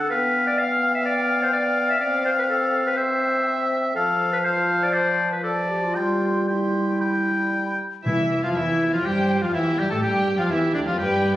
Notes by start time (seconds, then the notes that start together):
0.00 A4
0.09 B3 B4 F5 G5
0.47 D5
0.58 F5
0.95 E5
1.05 D5
1.43 C5
1.53 D5
1.90 E5
1.99 C4 D5
2.25 C5
2.38 B4
2.49 A4
2.86 B4
2.97 C5 E5
3.95 F3 A4 F5 A5
4.33 B4
4.44 C5 F5 A5
4.83 D5
4.93 C5 D5 A5
5.32 B4
5.43 A4 D5 A5
5.69 G4
5.83 F4
5.95 G3 F4 G5 C6
6.47 E4 G5 C6
7.01 G5 B5
8.05 E2 C3 E3 E4 E5
8.43 F2 F3 F4 F5
8.55 E2 E3 E4 E5
8.92 F2 F3 F4 F5
9.04 G2 G3 G4 C5 G5
9.41 F2 F3 F4 F5
9.53 E2 E3 E4 G4 E5
9.78 G2 G3 G4 G5
9.89 A2 A3 A4 A5
10.01 G2 G3 G4 G5
10.37 F2 F3 F4 F5
10.50 E2 E3 E4 E5
10.74 D2 D3 D4 D5
10.86 F2 F3 F4 F5
10.97 G2 G3 G4 B4 G5